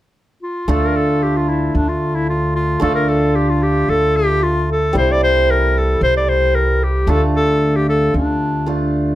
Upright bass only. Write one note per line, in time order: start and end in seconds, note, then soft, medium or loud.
0.68 1.73 D2 medium
1.75 2.80 D2 medium
2.82 3.86 D2 medium
3.88 4.93 D2 medium
4.94 5.99 C2 medium
6.01 7.06 C2 medium
7.07 8.12 D2 medium
8.14 9.15 D2 medium